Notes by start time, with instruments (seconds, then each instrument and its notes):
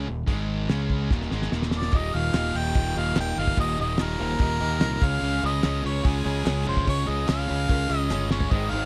0.07 fingered electric bass D#1, distorted electric guitar D#2 A#2
0.26 fingered electric bass G#1, distorted electric guitar G#2 D#3 G#3, kick, open hi-hat
0.69 fingered electric bass C#2, distorted electric guitar C#3 G#3 C#4, snare, open hi-hat
0.90 kick
1.10 fingered electric bass D#1, distorted electric guitar D#2 A#2 D#3, kick, snare
1.22 snare
1.31 fingered electric bass G#1, distorted electric guitar G#2 D#3 G#3, snare
1.42 snare
1.52 fingered electric bass D#1, distorted electric guitar D#2 A#2 D#3, snare
1.62 snare
1.71 snare
1.77 harmonica D5
1.82 snare
1.92 fingered electric bass D#1, distorted electric guitar D#2 A#2 D#3, reed electric piano F4 G4 D#5, kick, crash
1.97 harmonica D#5
2.13 fingered electric bass D#1, distorted electric guitar D#2 A#2 D#3, reed electric piano F4 G4 D#5, harmonica F5, crash
2.34 fingered electric bass D#1, distorted electric guitar D#2 A#2 D#3, reed electric piano F4 G4 D#5, snare, clap, crash
2.45 snare
2.54 fingered electric bass D#1, distorted electric guitar D#2 A#2 D#3, reed electric piano F4 G4 D#5, harmonica G5, crash
2.74 fingered electric bass D#1, distorted electric guitar D#2 A#2 D#3, reed electric piano F4 G4 D#5, kick, crash
2.96 fingered electric bass D#1, distorted electric guitar D#2 A#2 D#3, reed electric piano F4 G4 D#5, harmonica F5, crash
3.16 fingered electric bass D#1, distorted electric guitar D#2 A#2 D#3, reed electric piano F4 G4 D#5, snare, clap, crash
3.20 harmonica G5
3.37 fingered electric bass G1, distorted electric guitar D#2 A#2 D#3, reed electric piano F4 G4 D#5, harmonica F5, crash
3.47 kick
3.57 fingered electric bass D#1, distorted electric guitar D#2 A#2 D#3, reed electric piano F4 G4 D#5, harmonica D#5, kick, crash
3.78 fingered electric bass D#1, distorted electric guitar D#2 A#2 D#3, reed electric piano F4 G4 D#5, harmonica D#5, crash
3.98 fingered electric bass D#1, distorted electric guitar D#2 A#2 D#3, reed electric piano F4 G4 D#5, snare, clap, crash
4.03 harmonica A#4
4.18 fingered electric bass D#1, distorted electric guitar D#2 A#2 D#3, reed electric piano F4 G4 C5, crash
4.39 fingered electric bass D#1, distorted electric guitar D#2 A#2 D#3, reed electric piano F4 G4 D#5, kick, crash
4.59 distorted electric guitar D#2 A#2 D#3, fingered electric bass D#2, reed electric piano F4 G4 D#5, crash
4.80 fingered electric bass C2, distorted electric guitar D#2 A#2 D#3, reed electric piano F4 G4 D#5, snare, clap, crash
5.01 fingered electric bass C#2, distorted electric guitar C#3 G#3 C#4, reed electric piano F4 G#4 C#5, kick, crash
5.06 harmonica F5
5.21 fingered electric bass C#2, distorted electric guitar C#3 G#3 C#4, crash
5.42 fingered electric bass C#2, distorted electric guitar C#3 G#3 C#4, reed electric piano F4 G#4 C#5, harmonica D#5, crash
5.63 fingered electric bass C#2, distorted electric guitar C#3 G#3 C#4, reed electric piano F4 G#4 C#5, snare, clap, crash
5.74 snare
5.84 fingered electric bass C#2, distorted electric guitar C#3 G#3 C#4, reed electric piano F4 G#4 C#5, harmonica C#5, crash
6.03 fingered electric bass C#2, distorted electric guitar C#3 G#3 C#4, reed electric piano F4 G#4 C#5, harmonica G#4, kick, crash
6.25 fingered electric bass C#2, distorted electric guitar C#3 G#3 C#4, reed electric piano F4 G#4 C#5, crash
6.45 fingered electric bass C#2, distorted electric guitar C#3 G#3 C#4, reed electric piano F4 G#4 C#5, snare, clap, crash
6.66 fingered electric bass F1, distorted electric guitar C#3 G#3 C#4, reed electric piano F4 G#4 C#5, harmonica C5, crash
6.77 kick
6.86 fingered electric bass C#2, distorted electric guitar C#3 G#3 C#4, reed electric piano F4 G#4 C#5, harmonica C#5, kick, crash
7.07 fingered electric bass C#2, distorted electric guitar C#3 G#3 C#4, reed electric piano F4 G#4 C#5, harmonica D#5, crash
7.26 fingered electric bass C#2, distorted electric guitar C#3 G#3 C#4, reed electric piano F4 C#5, harmonica F5, snare, clap, crash
7.39 snare
7.48 fingered electric bass C#2, distorted electric guitar C#3 G#3 C#4, reed electric piano F4 G#4 C#5, crash
7.69 fingered electric bass C#2, distorted electric guitar C#3 G#3 C#4, reed electric piano F4 G#4 A#4, kick, crash
7.89 fingered electric bass C#2, distorted electric guitar C#3 G#3 C#4, reed electric piano F4 G#4 D#5, clap, crash
7.98 harmonica D#5
8.10 fingered electric bass G1, distorted electric guitar C#3 G#3 C#4, reed electric piano F4 G#4 C#5, snare, clap
8.31 distorted electric guitar C#3 G#3 C#4, reed electric piano F4 G#4, harmonica C#5, snare
8.40 floor tom
8.50 fingered electric bass G#1, distorted electric guitar G#2 D#3 G#3, reed electric piano D#4 G#4 C5, harmonica D#5, kick, crash
8.71 fingered electric bass G#1, distorted electric guitar G#2 D#3 G#3, reed electric piano D#4 G#4 C5, harmonica F5, crash